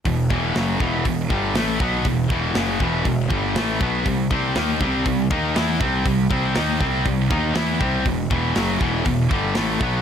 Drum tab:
HH |o-o-o-o-|o-o-o-o-|o-o-o-o-|o-o-o-o-|
SD |--o---o-|--o---o-|--o---o-|--o---o-|
BD |oo-ooo-o|oo-ooo-o|oo-ooo-o|oo-ooo-o|

HH |o-o-o-o-|
SD |--o---o-|
BD |oo-ooo-o|